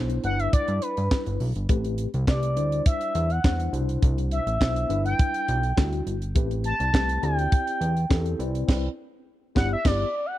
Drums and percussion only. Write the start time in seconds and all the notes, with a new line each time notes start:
0.10 closed hi-hat
0.24 closed hi-hat
0.40 closed hi-hat
0.53 kick, closed hi-hat
0.68 closed hi-hat
0.82 closed hi-hat
0.97 closed hi-hat
1.11 kick, snare, clap
1.26 closed hi-hat
1.40 open hi-hat
1.56 closed hi-hat
1.69 kick, closed hi-hat
1.85 closed hi-hat
1.98 closed hi-hat
2.14 closed hi-hat
2.27 kick, snare, clap
2.43 closed hi-hat
2.57 closed hi-hat
2.72 closed hi-hat
2.86 kick, closed hi-hat
3.01 closed hi-hat
3.15 closed hi-hat
3.30 closed hi-hat
3.44 kick, snare, clap
3.60 closed hi-hat
3.74 closed hi-hat
3.89 closed hi-hat
4.02 kick, closed hi-hat
4.18 closed hi-hat
4.31 closed hi-hat
4.47 closed hi-hat
4.61 kick, snare, clap
4.76 closed hi-hat
4.90 closed hi-hat
5.06 closed hi-hat
5.19 kick, closed hi-hat
5.34 closed hi-hat
5.48 closed hi-hat
5.63 closed hi-hat
5.77 kick, snare, clap
5.93 closed hi-hat
6.07 closed hi-hat
6.22 closed hi-hat
6.35 kick, closed hi-hat
6.51 closed hi-hat
6.64 closed hi-hat
6.80 closed hi-hat
6.94 kick, snare, clap
7.09 closed hi-hat
7.23 closed hi-hat
7.39 closed hi-hat
7.52 kick, closed hi-hat
7.67 closed hi-hat
7.82 closed hi-hat
7.97 closed hi-hat
8.11 kick, snare, clap
8.26 closed hi-hat
8.40 closed hi-hat
8.55 closed hi-hat
8.68 kick, snare, crash
9.56 kick, snare
9.85 kick, snare, crash